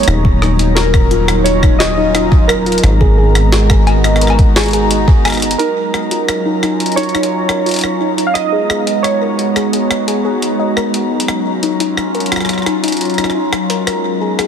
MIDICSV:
0, 0, Header, 1, 6, 480
1, 0, Start_track
1, 0, Key_signature, -6, "minor"
1, 0, Tempo, 689655
1, 54, Time_signature, 4, 2, 24, 8
1, 10073, End_track
2, 0, Start_track
2, 0, Title_t, "Synth keys"
2, 0, Program_c, 0, 88
2, 0, Note_on_c, 0, 73, 102
2, 524, Note_on_c, 0, 70, 97
2, 551, Note_off_c, 0, 73, 0
2, 1003, Note_on_c, 0, 73, 100
2, 1023, Note_off_c, 0, 70, 0
2, 1244, Note_on_c, 0, 75, 99
2, 1256, Note_off_c, 0, 73, 0
2, 1701, Note_off_c, 0, 75, 0
2, 1724, Note_on_c, 0, 70, 84
2, 3381, Note_off_c, 0, 70, 0
2, 3886, Note_on_c, 0, 70, 80
2, 4845, Note_on_c, 0, 73, 92
2, 4879, Note_off_c, 0, 70, 0
2, 5754, Note_on_c, 0, 77, 80
2, 5788, Note_off_c, 0, 73, 0
2, 5804, Note_on_c, 0, 75, 106
2, 5808, Note_off_c, 0, 77, 0
2, 6283, Note_on_c, 0, 73, 84
2, 6303, Note_off_c, 0, 75, 0
2, 7460, Note_off_c, 0, 73, 0
2, 10073, End_track
3, 0, Start_track
3, 0, Title_t, "Synth pluck"
3, 0, Program_c, 1, 84
3, 53, Note_on_c, 1, 63, 83
3, 126, Note_off_c, 1, 63, 0
3, 292, Note_on_c, 1, 63, 77
3, 402, Note_off_c, 1, 63, 0
3, 413, Note_on_c, 1, 63, 77
3, 486, Note_off_c, 1, 63, 0
3, 653, Note_on_c, 1, 70, 79
3, 726, Note_off_c, 1, 70, 0
3, 773, Note_on_c, 1, 65, 77
3, 846, Note_off_c, 1, 65, 0
3, 1012, Note_on_c, 1, 63, 83
3, 1057, Note_off_c, 1, 63, 0
3, 1133, Note_on_c, 1, 63, 77
3, 1206, Note_off_c, 1, 63, 0
3, 1374, Note_on_c, 1, 63, 78
3, 1482, Note_off_c, 1, 63, 0
3, 1494, Note_on_c, 1, 63, 81
3, 1566, Note_off_c, 1, 63, 0
3, 1734, Note_on_c, 1, 70, 75
3, 1806, Note_off_c, 1, 70, 0
3, 1854, Note_on_c, 1, 65, 79
3, 1926, Note_off_c, 1, 65, 0
3, 2094, Note_on_c, 1, 68, 81
3, 2137, Note_off_c, 1, 68, 0
3, 2214, Note_on_c, 1, 68, 75
3, 2286, Note_off_c, 1, 68, 0
3, 2454, Note_on_c, 1, 68, 79
3, 2563, Note_off_c, 1, 68, 0
3, 2574, Note_on_c, 1, 68, 78
3, 2646, Note_off_c, 1, 68, 0
3, 2814, Note_on_c, 1, 75, 77
3, 2886, Note_off_c, 1, 75, 0
3, 2935, Note_on_c, 1, 70, 85
3, 3007, Note_off_c, 1, 70, 0
3, 3175, Note_on_c, 1, 68, 79
3, 3218, Note_off_c, 1, 68, 0
3, 3294, Note_on_c, 1, 68, 81
3, 3367, Note_off_c, 1, 68, 0
3, 3534, Note_on_c, 1, 68, 76
3, 3643, Note_off_c, 1, 68, 0
3, 3654, Note_on_c, 1, 68, 77
3, 3726, Note_off_c, 1, 68, 0
3, 3895, Note_on_c, 1, 63, 79
3, 3967, Note_off_c, 1, 63, 0
3, 4134, Note_on_c, 1, 70, 70
3, 4207, Note_off_c, 1, 70, 0
3, 4255, Note_on_c, 1, 65, 71
3, 4327, Note_off_c, 1, 65, 0
3, 4495, Note_on_c, 1, 63, 75
3, 4538, Note_off_c, 1, 63, 0
3, 4614, Note_on_c, 1, 63, 70
3, 4686, Note_off_c, 1, 63, 0
3, 4854, Note_on_c, 1, 63, 81
3, 4962, Note_off_c, 1, 63, 0
3, 4974, Note_on_c, 1, 63, 73
3, 5046, Note_off_c, 1, 63, 0
3, 5213, Note_on_c, 1, 70, 71
3, 5286, Note_off_c, 1, 70, 0
3, 5333, Note_on_c, 1, 65, 73
3, 5406, Note_off_c, 1, 65, 0
3, 5573, Note_on_c, 1, 63, 73
3, 5617, Note_off_c, 1, 63, 0
3, 5693, Note_on_c, 1, 63, 68
3, 5766, Note_off_c, 1, 63, 0
3, 5933, Note_on_c, 1, 68, 76
3, 6042, Note_off_c, 1, 68, 0
3, 6054, Note_on_c, 1, 68, 73
3, 6126, Note_off_c, 1, 68, 0
3, 6293, Note_on_c, 1, 75, 78
3, 6366, Note_off_c, 1, 75, 0
3, 6414, Note_on_c, 1, 70, 73
3, 6486, Note_off_c, 1, 70, 0
3, 6654, Note_on_c, 1, 68, 69
3, 6697, Note_off_c, 1, 68, 0
3, 6773, Note_on_c, 1, 68, 83
3, 6846, Note_off_c, 1, 68, 0
3, 7013, Note_on_c, 1, 68, 73
3, 7122, Note_off_c, 1, 68, 0
3, 7133, Note_on_c, 1, 68, 73
3, 7206, Note_off_c, 1, 68, 0
3, 7373, Note_on_c, 1, 75, 71
3, 7446, Note_off_c, 1, 75, 0
3, 7494, Note_on_c, 1, 70, 71
3, 7566, Note_off_c, 1, 70, 0
3, 7734, Note_on_c, 1, 63, 80
3, 7777, Note_off_c, 1, 63, 0
3, 7854, Note_on_c, 1, 63, 78
3, 7926, Note_off_c, 1, 63, 0
3, 8094, Note_on_c, 1, 63, 72
3, 8203, Note_off_c, 1, 63, 0
3, 8213, Note_on_c, 1, 63, 75
3, 8286, Note_off_c, 1, 63, 0
3, 8454, Note_on_c, 1, 70, 70
3, 8526, Note_off_c, 1, 70, 0
3, 8574, Note_on_c, 1, 65, 70
3, 8646, Note_off_c, 1, 65, 0
3, 8814, Note_on_c, 1, 63, 74
3, 8857, Note_off_c, 1, 63, 0
3, 8934, Note_on_c, 1, 63, 75
3, 9006, Note_off_c, 1, 63, 0
3, 9174, Note_on_c, 1, 63, 75
3, 9282, Note_off_c, 1, 63, 0
3, 9293, Note_on_c, 1, 63, 72
3, 9366, Note_off_c, 1, 63, 0
3, 9534, Note_on_c, 1, 70, 71
3, 9606, Note_off_c, 1, 70, 0
3, 9653, Note_on_c, 1, 70, 81
3, 9726, Note_off_c, 1, 70, 0
3, 9893, Note_on_c, 1, 68, 75
3, 9937, Note_off_c, 1, 68, 0
3, 10013, Note_on_c, 1, 68, 75
3, 10073, Note_off_c, 1, 68, 0
3, 10073, End_track
4, 0, Start_track
4, 0, Title_t, "Ambient pad"
4, 0, Program_c, 2, 92
4, 0, Note_on_c, 2, 63, 77
4, 0, Note_on_c, 2, 82, 72
4, 53, Note_on_c, 2, 54, 88
4, 240, Note_on_c, 2, 61, 86
4, 491, Note_on_c, 2, 65, 94
4, 1974, Note_off_c, 2, 54, 0
4, 1974, Note_off_c, 2, 65, 0
4, 1975, Note_on_c, 2, 56, 85
4, 1997, Note_on_c, 2, 59, 89
4, 2319, Note_on_c, 2, 66, 86
4, 2742, Note_off_c, 2, 61, 0
4, 3894, Note_off_c, 2, 56, 0
4, 3894, Note_off_c, 2, 59, 0
4, 3894, Note_on_c, 2, 54, 79
4, 3895, Note_off_c, 2, 66, 0
4, 4087, Note_on_c, 2, 61, 77
4, 4180, Note_on_c, 2, 65, 73
4, 5814, Note_off_c, 2, 54, 0
4, 5814, Note_off_c, 2, 65, 0
4, 5814, Note_on_c, 2, 56, 75
4, 5863, Note_on_c, 2, 59, 66
4, 6280, Note_on_c, 2, 66, 77
4, 6403, Note_off_c, 2, 61, 0
4, 7733, Note_on_c, 2, 54, 73
4, 7734, Note_off_c, 2, 56, 0
4, 7734, Note_off_c, 2, 59, 0
4, 7734, Note_off_c, 2, 66, 0
4, 7786, Note_on_c, 2, 61, 74
4, 7924, Note_on_c, 2, 65, 71
4, 9654, Note_off_c, 2, 54, 0
4, 9654, Note_off_c, 2, 65, 0
4, 9654, Note_on_c, 2, 56, 81
4, 9740, Note_on_c, 2, 59, 68
4, 9825, Note_on_c, 2, 66, 80
4, 10073, Note_off_c, 2, 56, 0
4, 10073, Note_off_c, 2, 59, 0
4, 10073, Note_off_c, 2, 61, 0
4, 10073, Note_off_c, 2, 63, 0
4, 10073, Note_off_c, 2, 66, 0
4, 10073, Note_off_c, 2, 82, 0
4, 10073, End_track
5, 0, Start_track
5, 0, Title_t, "Acid bass"
5, 0, Program_c, 3, 38
5, 53, Note_on_c, 3, 27, 96
5, 1949, Note_off_c, 3, 27, 0
5, 1973, Note_on_c, 3, 32, 90
5, 3870, Note_off_c, 3, 32, 0
5, 10073, End_track
6, 0, Start_track
6, 0, Title_t, "Drums"
6, 23, Note_on_c, 9, 42, 43
6, 53, Note_off_c, 9, 42, 0
6, 53, Note_on_c, 9, 37, 82
6, 53, Note_on_c, 9, 42, 65
6, 123, Note_off_c, 9, 37, 0
6, 123, Note_off_c, 9, 42, 0
6, 173, Note_on_c, 9, 36, 110
6, 242, Note_off_c, 9, 36, 0
6, 293, Note_on_c, 9, 37, 52
6, 363, Note_off_c, 9, 37, 0
6, 413, Note_on_c, 9, 42, 54
6, 482, Note_off_c, 9, 42, 0
6, 533, Note_on_c, 9, 38, 109
6, 533, Note_on_c, 9, 42, 65
6, 602, Note_off_c, 9, 38, 0
6, 602, Note_off_c, 9, 42, 0
6, 653, Note_on_c, 9, 36, 110
6, 653, Note_on_c, 9, 37, 58
6, 723, Note_off_c, 9, 36, 0
6, 723, Note_off_c, 9, 37, 0
6, 773, Note_on_c, 9, 42, 37
6, 843, Note_off_c, 9, 42, 0
6, 893, Note_on_c, 9, 37, 79
6, 893, Note_on_c, 9, 42, 51
6, 963, Note_off_c, 9, 37, 0
6, 963, Note_off_c, 9, 42, 0
6, 1014, Note_on_c, 9, 42, 65
6, 1083, Note_off_c, 9, 42, 0
6, 1133, Note_on_c, 9, 36, 100
6, 1134, Note_on_c, 9, 37, 53
6, 1203, Note_off_c, 9, 36, 0
6, 1204, Note_off_c, 9, 37, 0
6, 1254, Note_on_c, 9, 38, 117
6, 1254, Note_on_c, 9, 42, 61
6, 1324, Note_off_c, 9, 38, 0
6, 1324, Note_off_c, 9, 42, 0
6, 1494, Note_on_c, 9, 37, 53
6, 1494, Note_on_c, 9, 42, 61
6, 1564, Note_off_c, 9, 37, 0
6, 1564, Note_off_c, 9, 42, 0
6, 1613, Note_on_c, 9, 36, 115
6, 1683, Note_off_c, 9, 36, 0
6, 1734, Note_on_c, 9, 37, 84
6, 1803, Note_off_c, 9, 37, 0
6, 1854, Note_on_c, 9, 42, 23
6, 1893, Note_off_c, 9, 42, 0
6, 1893, Note_on_c, 9, 42, 31
6, 1933, Note_off_c, 9, 42, 0
6, 1933, Note_on_c, 9, 42, 40
6, 1973, Note_off_c, 9, 42, 0
6, 1973, Note_on_c, 9, 37, 53
6, 1973, Note_on_c, 9, 42, 68
6, 2043, Note_off_c, 9, 37, 0
6, 2043, Note_off_c, 9, 42, 0
6, 2093, Note_on_c, 9, 36, 117
6, 2163, Note_off_c, 9, 36, 0
6, 2334, Note_on_c, 9, 37, 59
6, 2334, Note_on_c, 9, 42, 54
6, 2403, Note_off_c, 9, 37, 0
6, 2403, Note_off_c, 9, 42, 0
6, 2453, Note_on_c, 9, 38, 111
6, 2453, Note_on_c, 9, 42, 68
6, 2523, Note_off_c, 9, 38, 0
6, 2523, Note_off_c, 9, 42, 0
6, 2573, Note_on_c, 9, 36, 100
6, 2574, Note_on_c, 9, 37, 85
6, 2643, Note_off_c, 9, 36, 0
6, 2643, Note_off_c, 9, 37, 0
6, 2694, Note_on_c, 9, 42, 37
6, 2694, Note_on_c, 9, 56, 96
6, 2764, Note_off_c, 9, 42, 0
6, 2764, Note_off_c, 9, 56, 0
6, 2814, Note_on_c, 9, 37, 53
6, 2814, Note_on_c, 9, 42, 55
6, 2884, Note_off_c, 9, 37, 0
6, 2884, Note_off_c, 9, 42, 0
6, 2894, Note_on_c, 9, 37, 43
6, 2934, Note_on_c, 9, 42, 67
6, 2964, Note_off_c, 9, 37, 0
6, 2974, Note_on_c, 9, 37, 34
6, 2994, Note_on_c, 9, 56, 86
6, 3003, Note_off_c, 9, 42, 0
6, 3043, Note_off_c, 9, 37, 0
6, 3054, Note_on_c, 9, 36, 114
6, 3054, Note_on_c, 9, 42, 37
6, 3063, Note_off_c, 9, 56, 0
6, 3123, Note_off_c, 9, 36, 0
6, 3124, Note_off_c, 9, 42, 0
6, 3175, Note_on_c, 9, 37, 57
6, 3175, Note_on_c, 9, 38, 115
6, 3175, Note_on_c, 9, 42, 61
6, 3191, Note_off_c, 9, 42, 0
6, 3191, Note_on_c, 9, 42, 50
6, 3208, Note_off_c, 9, 42, 0
6, 3208, Note_on_c, 9, 42, 40
6, 3225, Note_off_c, 9, 42, 0
6, 3225, Note_on_c, 9, 42, 35
6, 3242, Note_off_c, 9, 42, 0
6, 3242, Note_on_c, 9, 42, 28
6, 3244, Note_off_c, 9, 37, 0
6, 3244, Note_off_c, 9, 38, 0
6, 3260, Note_off_c, 9, 42, 0
6, 3260, Note_on_c, 9, 42, 22
6, 3277, Note_off_c, 9, 42, 0
6, 3277, Note_on_c, 9, 42, 18
6, 3295, Note_off_c, 9, 42, 0
6, 3295, Note_on_c, 9, 42, 52
6, 3364, Note_off_c, 9, 42, 0
6, 3415, Note_on_c, 9, 42, 64
6, 3484, Note_off_c, 9, 42, 0
6, 3534, Note_on_c, 9, 36, 114
6, 3603, Note_off_c, 9, 36, 0
6, 3655, Note_on_c, 9, 37, 54
6, 3655, Note_on_c, 9, 42, 53
6, 3655, Note_on_c, 9, 56, 99
6, 3672, Note_off_c, 9, 37, 0
6, 3672, Note_off_c, 9, 42, 0
6, 3672, Note_on_c, 9, 37, 44
6, 3672, Note_on_c, 9, 42, 44
6, 3688, Note_off_c, 9, 37, 0
6, 3688, Note_off_c, 9, 42, 0
6, 3688, Note_on_c, 9, 37, 36
6, 3688, Note_on_c, 9, 42, 36
6, 3705, Note_off_c, 9, 37, 0
6, 3705, Note_off_c, 9, 42, 0
6, 3705, Note_on_c, 9, 37, 29
6, 3705, Note_on_c, 9, 42, 29
6, 3714, Note_off_c, 9, 42, 0
6, 3714, Note_on_c, 9, 42, 29
6, 3723, Note_off_c, 9, 37, 0
6, 3723, Note_off_c, 9, 42, 0
6, 3723, Note_on_c, 9, 37, 25
6, 3723, Note_on_c, 9, 42, 24
6, 3724, Note_off_c, 9, 56, 0
6, 3740, Note_off_c, 9, 37, 0
6, 3740, Note_off_c, 9, 42, 0
6, 3740, Note_on_c, 9, 37, 20
6, 3740, Note_on_c, 9, 42, 20
6, 3757, Note_off_c, 9, 37, 0
6, 3757, Note_off_c, 9, 42, 0
6, 3757, Note_on_c, 9, 37, 16
6, 3757, Note_on_c, 9, 42, 16
6, 3774, Note_off_c, 9, 42, 0
6, 3774, Note_on_c, 9, 42, 76
6, 3827, Note_off_c, 9, 37, 0
6, 3833, Note_off_c, 9, 42, 0
6, 3833, Note_on_c, 9, 42, 84
6, 3893, Note_off_c, 9, 42, 0
6, 3893, Note_on_c, 9, 42, 58
6, 3963, Note_off_c, 9, 42, 0
6, 4134, Note_on_c, 9, 37, 49
6, 4203, Note_off_c, 9, 37, 0
6, 4254, Note_on_c, 9, 42, 52
6, 4324, Note_off_c, 9, 42, 0
6, 4374, Note_on_c, 9, 37, 71
6, 4374, Note_on_c, 9, 42, 57
6, 4444, Note_off_c, 9, 37, 0
6, 4444, Note_off_c, 9, 42, 0
6, 4614, Note_on_c, 9, 37, 49
6, 4614, Note_on_c, 9, 42, 34
6, 4683, Note_off_c, 9, 37, 0
6, 4683, Note_off_c, 9, 42, 0
6, 4734, Note_on_c, 9, 42, 46
6, 4774, Note_off_c, 9, 42, 0
6, 4774, Note_on_c, 9, 42, 39
6, 4814, Note_off_c, 9, 42, 0
6, 4814, Note_on_c, 9, 42, 31
6, 4854, Note_off_c, 9, 42, 0
6, 4854, Note_on_c, 9, 42, 60
6, 4895, Note_off_c, 9, 42, 0
6, 4895, Note_on_c, 9, 42, 20
6, 4934, Note_off_c, 9, 42, 0
6, 4934, Note_on_c, 9, 42, 17
6, 4974, Note_off_c, 9, 42, 0
6, 4974, Note_on_c, 9, 37, 49
6, 4974, Note_on_c, 9, 42, 33
6, 5034, Note_off_c, 9, 42, 0
6, 5034, Note_on_c, 9, 42, 56
6, 5044, Note_off_c, 9, 37, 0
6, 5104, Note_off_c, 9, 42, 0
6, 5213, Note_on_c, 9, 37, 75
6, 5283, Note_off_c, 9, 37, 0
6, 5334, Note_on_c, 9, 42, 27
6, 5351, Note_off_c, 9, 42, 0
6, 5351, Note_on_c, 9, 42, 33
6, 5369, Note_off_c, 9, 42, 0
6, 5369, Note_on_c, 9, 42, 36
6, 5387, Note_off_c, 9, 42, 0
6, 5387, Note_on_c, 9, 42, 41
6, 5404, Note_off_c, 9, 42, 0
6, 5404, Note_on_c, 9, 42, 45
6, 5420, Note_off_c, 9, 42, 0
6, 5420, Note_on_c, 9, 42, 49
6, 5437, Note_off_c, 9, 42, 0
6, 5437, Note_on_c, 9, 42, 52
6, 5454, Note_on_c, 9, 37, 50
6, 5507, Note_off_c, 9, 42, 0
6, 5524, Note_off_c, 9, 37, 0
6, 5695, Note_on_c, 9, 42, 47
6, 5764, Note_off_c, 9, 42, 0
6, 5813, Note_on_c, 9, 37, 48
6, 5813, Note_on_c, 9, 42, 63
6, 5883, Note_off_c, 9, 37, 0
6, 5883, Note_off_c, 9, 42, 0
6, 6054, Note_on_c, 9, 37, 72
6, 6124, Note_off_c, 9, 37, 0
6, 6174, Note_on_c, 9, 42, 53
6, 6244, Note_off_c, 9, 42, 0
6, 6294, Note_on_c, 9, 37, 47
6, 6294, Note_on_c, 9, 42, 60
6, 6364, Note_off_c, 9, 37, 0
6, 6364, Note_off_c, 9, 42, 0
6, 6534, Note_on_c, 9, 42, 35
6, 6604, Note_off_c, 9, 42, 0
6, 6654, Note_on_c, 9, 37, 46
6, 6654, Note_on_c, 9, 42, 52
6, 6723, Note_off_c, 9, 37, 0
6, 6723, Note_off_c, 9, 42, 0
6, 6774, Note_on_c, 9, 42, 62
6, 6844, Note_off_c, 9, 42, 0
6, 6894, Note_on_c, 9, 37, 71
6, 6894, Note_on_c, 9, 42, 33
6, 6964, Note_off_c, 9, 37, 0
6, 6964, Note_off_c, 9, 42, 0
6, 7015, Note_on_c, 9, 42, 59
6, 7085, Note_off_c, 9, 42, 0
6, 7255, Note_on_c, 9, 42, 47
6, 7325, Note_off_c, 9, 42, 0
6, 7495, Note_on_c, 9, 37, 49
6, 7564, Note_off_c, 9, 37, 0
6, 7614, Note_on_c, 9, 42, 50
6, 7684, Note_off_c, 9, 42, 0
6, 7795, Note_on_c, 9, 42, 59
6, 7854, Note_on_c, 9, 37, 68
6, 7864, Note_off_c, 9, 42, 0
6, 7923, Note_off_c, 9, 37, 0
6, 8093, Note_on_c, 9, 42, 52
6, 8163, Note_off_c, 9, 42, 0
6, 8214, Note_on_c, 9, 42, 59
6, 8284, Note_off_c, 9, 42, 0
6, 8334, Note_on_c, 9, 37, 47
6, 8404, Note_off_c, 9, 37, 0
6, 8454, Note_on_c, 9, 42, 16
6, 8494, Note_off_c, 9, 42, 0
6, 8494, Note_on_c, 9, 42, 21
6, 8533, Note_off_c, 9, 42, 0
6, 8533, Note_on_c, 9, 42, 27
6, 8574, Note_off_c, 9, 42, 0
6, 8574, Note_on_c, 9, 37, 70
6, 8574, Note_on_c, 9, 42, 50
6, 8604, Note_off_c, 9, 37, 0
6, 8604, Note_on_c, 9, 37, 58
6, 8634, Note_off_c, 9, 37, 0
6, 8634, Note_on_c, 9, 37, 43
6, 8643, Note_off_c, 9, 42, 0
6, 8664, Note_off_c, 9, 37, 0
6, 8664, Note_on_c, 9, 37, 37
6, 8694, Note_off_c, 9, 37, 0
6, 8694, Note_on_c, 9, 37, 30
6, 8694, Note_on_c, 9, 42, 62
6, 8724, Note_off_c, 9, 37, 0
6, 8724, Note_on_c, 9, 37, 24
6, 8754, Note_off_c, 9, 37, 0
6, 8754, Note_on_c, 9, 37, 20
6, 8764, Note_off_c, 9, 42, 0
6, 8784, Note_off_c, 9, 37, 0
6, 8784, Note_on_c, 9, 37, 16
6, 8814, Note_off_c, 9, 37, 0
6, 8814, Note_on_c, 9, 37, 47
6, 8814, Note_on_c, 9, 42, 33
6, 8884, Note_off_c, 9, 37, 0
6, 8884, Note_off_c, 9, 42, 0
6, 8934, Note_on_c, 9, 42, 56
6, 8964, Note_off_c, 9, 42, 0
6, 8964, Note_on_c, 9, 42, 45
6, 8995, Note_off_c, 9, 42, 0
6, 8995, Note_on_c, 9, 42, 36
6, 9025, Note_off_c, 9, 42, 0
6, 9025, Note_on_c, 9, 42, 30
6, 9055, Note_off_c, 9, 42, 0
6, 9055, Note_on_c, 9, 42, 49
6, 9085, Note_off_c, 9, 42, 0
6, 9085, Note_on_c, 9, 42, 20
6, 9115, Note_off_c, 9, 42, 0
6, 9115, Note_on_c, 9, 42, 16
6, 9145, Note_off_c, 9, 42, 0
6, 9145, Note_on_c, 9, 42, 13
6, 9174, Note_off_c, 9, 42, 0
6, 9174, Note_on_c, 9, 37, 46
6, 9174, Note_on_c, 9, 42, 59
6, 9216, Note_off_c, 9, 37, 0
6, 9216, Note_on_c, 9, 37, 36
6, 9244, Note_off_c, 9, 42, 0
6, 9255, Note_off_c, 9, 37, 0
6, 9255, Note_on_c, 9, 37, 29
6, 9324, Note_off_c, 9, 37, 0
6, 9414, Note_on_c, 9, 37, 70
6, 9484, Note_off_c, 9, 37, 0
6, 9534, Note_on_c, 9, 42, 50
6, 9604, Note_off_c, 9, 42, 0
6, 9654, Note_on_c, 9, 37, 46
6, 9654, Note_on_c, 9, 42, 59
6, 9724, Note_off_c, 9, 37, 0
6, 9724, Note_off_c, 9, 42, 0
6, 10014, Note_on_c, 9, 37, 50
6, 10014, Note_on_c, 9, 42, 50
6, 10073, Note_off_c, 9, 37, 0
6, 10073, Note_off_c, 9, 42, 0
6, 10073, End_track
0, 0, End_of_file